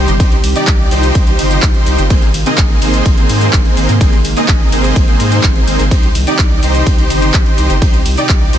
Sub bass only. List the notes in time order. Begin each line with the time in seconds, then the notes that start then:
0.08 G1
0.20 C2
0.44 C2
0.68 C2
0.91 C2
1.15 C2
1.39 G1
1.63 C2
1.87 C2
1.98 G1
2.10 G#1
2.34 G#1
2.58 G#1
2.82 G#1
3.06 G#1
3.29 G#2
3.53 G#1
3.77 G#1
3.89 G#2
4.01 G#1
4.25 G#1
4.48 G#1
4.72 G#1
4.96 G#1
5.20 G#2
5.44 G#1
5.68 G#1
5.79 G#1
5.91 C2
6.15 C2
6.39 C2
6.63 C2
6.87 C2
7.10 G1
7.34 C2
7.58 C2
7.70 G1
7.82 C2
8.06 C2
8.29 C2
8.53 C2